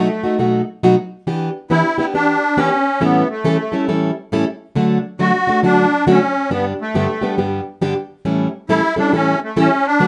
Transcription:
Already playing: A3
0.24 A3 D#4 F#4
0.39 B2 F#3 A3 D#4 F#4
0.83 B2 F#3 A3 D#4 F#4
1.27 E3 B3 D4 G4
1.70 E3 B3 D4 E4 G4
1.98 B3 D4 E4 G4
2.14 E3 B3 D4 G4
2.57 E3 B3 C#4 D4 G4
3.00 A2 E3 G3 B3 C#4 E4 A4
3.30 A3
3.44 A2 E3 G3 C#4 E4 A4
3.72 G3 C#4 E4 A4
3.88 A2 E3 G3 C#4 E4 A4
4.32 A2 E3 G3 C#4 E4 A4
4.75 D3 F#3 A3 D4 F#4
5.19 D3 F#3 A3 D4 F#4
5.47 A3 D4 F#4
5.63 D3 F#3 A3 D4 F#4
6.07 D3 F#3 A3 D4 F#4
6.11 C#4
6.50 G2 D3 G3 B3 D4 G4
6.81 A3
6.95 G2 D3 G3 B3 D4 G4
7.21 G3 B3 D4 G4
7.38 G2 D3 G3 B3 D4 G4
7.81 G2 D3 G3 B3 D4 G4
8.25 A2 E3 G3 C#4 E4 A4
8.69 A2 E3 G3 C#4 E4 A4
8.96 G3 C#4 D4 E4 A4
9.12 A2 E3 G3 C#4 E4 A4
9.43 A3
9.56 A2 E3 G3 C#4 E4 A4
9.86 D4
10.00 D3 F#3 A3 D4 F#4 B4

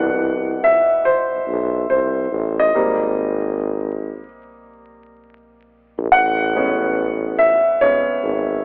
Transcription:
Already playing: C2 B2 E3 D4 F#5
0.64 E5
1.05 C5
1.33 B1
1.47 B1
1.90 C2 C5
2.32 A1
2.60 D#5
2.75 G#1 G3 A#3 C4
5.98 A#1
6.12 A1 F#5
6.55 G#3 B3 C#4
7.39 E5
7.81 G#3 B3 C#4 C#5
8.09 G#1
8.24 G#1

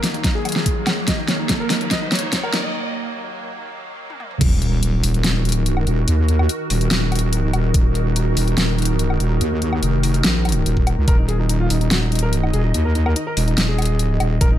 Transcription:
Already playing: D#2 D#3 F#3 A#3, riser
0.03 D#4, snare, open hi-hat
0.14 D#4, closed hi-hat
0.24 D#4, kick, snare, closed hi-hat
0.35 G#4
0.45 closed hi-hat, low woodblock
0.49 closed hi-hat
0.52 snare, closed hi-hat
0.66 kick, closed hi-hat
0.87 snare, closed hi-hat, low woodblock
1.08 D#5, kick, snare, closed hi-hat
1.18 D#4
1.28 C#5, snare, closed hi-hat
1.39 D#4
1.49 D#4, kick, snare, closed hi-hat
1.60 A#4
1.70 D#4, snare, open hi-hat
1.81 D#4, closed hi-hat
1.91 D#5, kick, snare, closed hi-hat
2.02 D#4
2.12 C#5, snare, closed hi-hat
2.15 closed hi-hat
2.19 D#4, closed hi-hat
2.33 D#4, kick, snare, closed hi-hat
2.43 A#4, low woodblock
2.53 D#4, snare, closed hi-hat
2.64 D#4
4.10 high tom
4.20 mid tom
4.31 mid tom
4.41 D#1 D#3 D#4 F#4 A#4, kick, closed hi-hat, crash, sub drop
4.62 closed hi-hat
4.83 closed hi-hat
5.03 D#1, open hi-hat
5.14 closed hi-hat
5.24 snare, closed hi-hat
5.45 closed hi-hat
5.49 closed hi-hat
5.52 closed hi-hat
5.66 closed hi-hat
5.77 low woodblock
5.87 D#1, closed hi-hat
6.08 D#2, closed hi-hat
6.29 closed hi-hat
6.39 low woodblock
6.49 closed hi-hat
6.70 D#1, open hi-hat
6.81 closed hi-hat
6.91 snare, closed hi-hat
7.12 closed hi-hat, low woodblock
7.15 closed hi-hat
7.19 closed hi-hat
7.28 D1
7.33 closed hi-hat
7.53 D#1, closed hi-hat, low woodblock
7.74 D#1, kick, closed hi-hat
7.95 closed hi-hat
8.16 closed hi-hat
8.37 D#1, open hi-hat
8.48 closed hi-hat
8.58 snare, closed hi-hat
8.79 closed hi-hat
8.82 closed hi-hat
8.85 closed hi-hat
8.99 closed hi-hat
9.10 low woodblock
9.20 D#1, closed hi-hat
9.41 D#2, closed hi-hat
9.62 closed hi-hat
9.73 low woodblock
9.83 F1, closed hi-hat
10.03 open hi-hat
10.14 closed hi-hat
10.24 A#1, snare, closed hi-hat
10.45 closed hi-hat, low woodblock
10.49 closed hi-hat
10.52 closed hi-hat
10.66 D#1, closed hi-hat
10.77 kick
10.87 closed hi-hat, low woodblock
10.98 C#2
11.08 D#1 A#4 D#5, kick, closed hi-hat
11.19 D#4
11.29 G#4, closed hi-hat
11.39 D#4
11.49 D#4, closed hi-hat
11.60 F4
11.70 D#1 D#4, open hi-hat
11.81 D#4, closed hi-hat
11.91 F#4, snare, closed hi-hat
12.02 D#4
12.12 D#4, closed hi-hat
12.15 closed hi-hat
12.19 A#4, closed hi-hat
12.33 D#4, closed hi-hat
12.43 D#4, low woodblock
12.53 D#1 G#4, closed hi-hat
12.64 D#4
12.74 D#2 D#4, closed hi-hat
12.85 A#4
12.95 D#4, closed hi-hat
13.06 A#4, low woodblock
13.16 D#4, closed hi-hat
13.27 A#4
13.37 D#1 D#4, open hi-hat
13.48 D#4, closed hi-hat
13.58 D#4, snare, closed hi-hat
13.69 G#4
13.79 closed hi-hat, low woodblock
13.82 closed hi-hat
13.85 closed hi-hat
13.95 D1
13.99 closed hi-hat
14.20 D#1, closed hi-hat, low woodblock
14.41 D#1 A#4, kick, closed hi-hat
14.52 D#4

